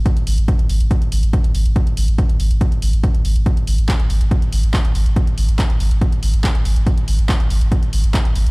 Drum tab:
HH |xxoxxxoxxxoxxxox|xxoxxxoxxxoxxxox|xxoxxxoxxxoxxxox|xxoxxxoxxxoxxxox|
CP |----------------|----------------|----x-------x---|----x-------x---|
BD |o---o---o---o---|o---o---o---o---|o---o---o---o---|o---o---o---o---|

HH |xxoxxxoxxxoxxxox|
CP |----x-------x---|
BD |o---o---o---o---|